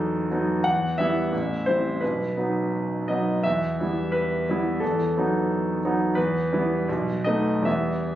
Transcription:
0.00 0.66 E2 soft
0.00 0.28 F#3 soft
0.00 0.28 B3 soft
0.00 0.28 D#4 soft
0.00 0.67 A4 medium
0.31 0.61 F#3 soft
0.31 0.62 B3 soft
0.31 0.62 D#4 soft
0.64 0.98 E2 soft
0.64 0.98 F#5 medium
0.98 1.29 G3 soft
0.98 1.30 B3 soft
0.98 1.30 E4 soft
0.98 1.66 E5 medium
1.32 1.66 A1 soft
1.66 1.99 G3 soft
1.66 1.99 C4 soft
1.66 1.99 E4 soft
1.66 2.01 C5 medium
2.01 2.36 B1 soft
2.01 3.08 B4 medium
2.37 3.05 F#3 soft
2.37 3.05 B3 soft
2.37 3.05 D#4 soft
3.08 3.41 F#3 soft
3.08 3.42 B3 soft
3.08 3.42 D#4 soft
3.08 3.44 D#5 soft
3.43 3.79 E2 soft
3.43 4.13 E5 medium
3.80 4.44 G3 soft
3.80 4.44 B3 soft
3.80 4.44 E4 soft
4.12 4.81 B4 medium
4.49 4.79 G3 soft
4.49 4.80 B3 soft
4.49 4.80 E4 soft
4.80 5.14 E2 soft
4.80 5.48 A4 soft
5.17 5.79 F#3 soft
5.17 5.80 B3 soft
5.17 5.80 D#4 soft
5.85 6.14 F#3 soft
5.85 6.15 B3 soft
5.85 6.14 D#4 soft
6.15 6.51 E2 soft
6.15 7.25 B4 medium
6.53 6.85 G3 soft
6.53 6.85 B3 soft
6.53 6.85 E4 soft
6.89 7.25 B1 soft
7.24 7.62 A3 soft
7.24 7.62 B3 soft
7.24 7.62 D#4 soft
7.24 7.65 D#5 medium
7.62 8.15 E2 soft
7.62 8.15 G3 soft
7.62 8.15 B3 soft
7.62 8.15 E5 medium
7.67 8.15 E4 soft

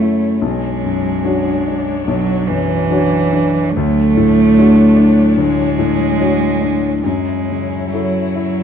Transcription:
0.00 0.38 F#2 soft
0.00 0.44 C#3 soft
0.00 0.42 F#3 soft
0.00 0.44 A3 medium
0.00 0.02 E4 soft
0.00 0.38 E4 soft
0.00 0.43 E4 soft
0.00 0.45 F#4 soft
0.00 0.38 C#5 soft
0.00 0.44 C#5 soft
0.42 2.02 B1 soft
0.42 3.71 F#3 soft
0.42 2.07 G#3 medium
0.42 3.74 D4 soft
0.42 3.71 C#5 soft
0.84 1.50 F#2 soft
1.24 1.62 D4 soft
1.24 1.62 F#4 soft
1.24 1.62 C#5 soft
1.68 2.32 D4 soft
2.07 3.70 B1 soft
2.07 2.50 F#3 medium
2.49 3.15 F#2 soft
2.49 3.74 E3 medium
2.90 3.28 D4 soft
2.90 3.28 F#4 soft
2.90 3.29 C#5 soft
3.33 3.75 D4 soft
3.72 7.00 F#3 medium
3.72 5.38 A3 medium
3.72 7.00 D4 medium
3.72 7.00 C#5 medium
3.77 5.34 D2 medium
4.17 4.81 A2 soft
4.58 4.93 D4 soft
4.58 4.93 F#4 soft
4.58 4.93 C#5 soft
4.96 5.61 D4 soft
5.36 7.00 D2 soft
5.36 7.03 G#3 medium
5.79 6.45 A2 soft
6.20 6.58 D4 soft
6.20 6.58 F#4 soft
6.20 6.58 C#5 soft
6.61 7.04 D4 soft
7.03 8.63 F#2 soft
7.03 8.63 F#3 soft
7.03 7.92 G#3 medium
7.03 8.63 E4 soft
7.03 8.63 C#5 soft
7.49 8.18 C#3 soft
7.90 8.63 F#3 medium
7.90 8.32 E4 soft
7.90 8.32 A4 soft
7.95 8.32 C#5 soft
8.35 8.63 E4 soft

